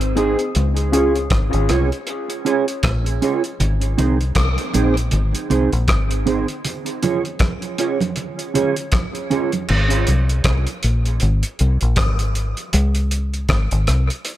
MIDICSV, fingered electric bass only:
0, 0, Header, 1, 2, 480
1, 0, Start_track
1, 0, Key_signature, -4, "major"
1, 0, Tempo, 761421
1, 344, Time_signature, 4, 2, 24, 8
1, 9059, End_track
2, 0, Start_track
2, 0, Title_t, "Fingered electric bass"
2, 0, Program_c, 0, 33
2, 0, Note_on_c, 0, 32, 77
2, 219, Note_off_c, 0, 32, 0
2, 353, Note_on_c, 0, 37, 90
2, 804, Note_off_c, 0, 37, 0
2, 827, Note_on_c, 0, 32, 84
2, 954, Note_off_c, 0, 32, 0
2, 969, Note_on_c, 0, 32, 89
2, 1061, Note_off_c, 0, 32, 0
2, 1072, Note_on_c, 0, 36, 79
2, 1197, Note_off_c, 0, 36, 0
2, 1791, Note_on_c, 0, 34, 77
2, 2012, Note_off_c, 0, 34, 0
2, 2273, Note_on_c, 0, 32, 91
2, 2493, Note_off_c, 0, 32, 0
2, 2516, Note_on_c, 0, 36, 82
2, 2735, Note_off_c, 0, 36, 0
2, 2749, Note_on_c, 0, 36, 70
2, 2876, Note_off_c, 0, 36, 0
2, 2994, Note_on_c, 0, 34, 70
2, 3214, Note_off_c, 0, 34, 0
2, 3234, Note_on_c, 0, 32, 86
2, 3359, Note_off_c, 0, 32, 0
2, 3473, Note_on_c, 0, 36, 75
2, 3599, Note_off_c, 0, 36, 0
2, 3611, Note_on_c, 0, 34, 79
2, 3704, Note_off_c, 0, 34, 0
2, 3712, Note_on_c, 0, 32, 79
2, 4063, Note_off_c, 0, 32, 0
2, 6115, Note_on_c, 0, 32, 100
2, 6335, Note_off_c, 0, 32, 0
2, 6355, Note_on_c, 0, 36, 74
2, 6574, Note_off_c, 0, 36, 0
2, 6589, Note_on_c, 0, 36, 78
2, 6716, Note_off_c, 0, 36, 0
2, 6834, Note_on_c, 0, 34, 76
2, 7054, Note_off_c, 0, 34, 0
2, 7075, Note_on_c, 0, 32, 87
2, 7200, Note_off_c, 0, 32, 0
2, 7316, Note_on_c, 0, 36, 76
2, 7440, Note_off_c, 0, 36, 0
2, 7452, Note_on_c, 0, 34, 74
2, 7544, Note_off_c, 0, 34, 0
2, 7548, Note_on_c, 0, 32, 84
2, 7900, Note_off_c, 0, 32, 0
2, 8031, Note_on_c, 0, 37, 110
2, 8483, Note_off_c, 0, 37, 0
2, 8506, Note_on_c, 0, 32, 86
2, 8634, Note_off_c, 0, 32, 0
2, 8648, Note_on_c, 0, 32, 85
2, 8741, Note_off_c, 0, 32, 0
2, 8752, Note_on_c, 0, 36, 80
2, 8877, Note_off_c, 0, 36, 0
2, 9059, End_track
0, 0, End_of_file